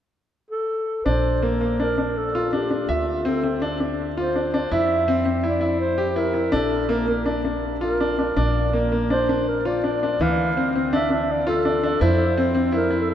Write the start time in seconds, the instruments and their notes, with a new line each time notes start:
0.50 clarinet A4
1.04 upright bass A#1, grand piano D4, clarinet C5
1.42 grand piano A#3
1.61 grand piano A#3
1.78 grand piano D4, clarinet A#4
1.98 grand piano D4
2.17 clarinet A4
2.35 grand piano F4
2.53 grand piano D4, clarinet G4
2.71 grand piano D4
2.89 upright bass D2, clarinet F4, grand piano E5
3.25 grand piano C4, clarinet A4
3.43 grand piano C4
3.62 grand piano D4
3.80 grand piano D4
4.17 grand piano F4, clarinet C5
4.36 grand piano D4
4.54 grand piano D4
4.71 upright bass F2, grand piano E4, clarinet E5
5.08 grand piano C4
5.25 grand piano C4
5.43 grand piano E4, clarinet D5
5.61 grand piano E4
5.81 clarinet C5
5.98 grand piano G4
6.10 clarinet C5
6.16 grand piano E4, clarinet A#4
6.34 grand piano E4
6.52 upright bass A#1, grand piano D4, clarinet A4
6.89 grand piano A#3, clarinet A#4
7.08 grand piano A#3
7.26 grand piano D4
7.45 grand piano D4
7.81 grand piano F4, clarinet A#4
8.00 grand piano D4
8.19 grand piano D4
8.37 upright bass A#1, grand piano D4, clarinet D5
8.73 grand piano A#3
8.92 grand piano A#3
9.10 grand piano D4, clarinet C5
9.29 grand piano D4
9.48 clarinet A#4
9.65 grand piano F4, clarinet D5
9.84 grand piano D4
10.03 grand piano D4
10.20 upright bass D2, grand piano E3, clarinet F5
10.57 grand piano C4
10.75 grand piano C4
10.93 grand piano D4, clarinet E5
11.10 grand piano D4
11.31 clarinet D5
11.47 grand piano F4, clarinet A4
11.65 grand piano D4
11.83 grand piano D4
12.01 upright bass F2, grand piano E4, clarinet C5
12.37 grand piano C4
12.55 grand piano C4
12.72 grand piano E4, clarinet A#4
12.91 grand piano E4
12.99 clarinet A4 A#4
13.10 clarinet A4